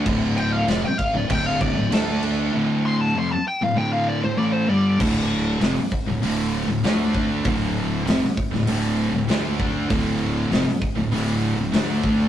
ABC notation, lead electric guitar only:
X:1
M:4/4
L:1/16
Q:1/4=98
K:Dm
V:1 name="Lead electric guitar"
z2 g f d g f d g f d2 A2 z2 | z2 c' a c' a g f g f d c d c d2 | z16 | z16 |
z16 |]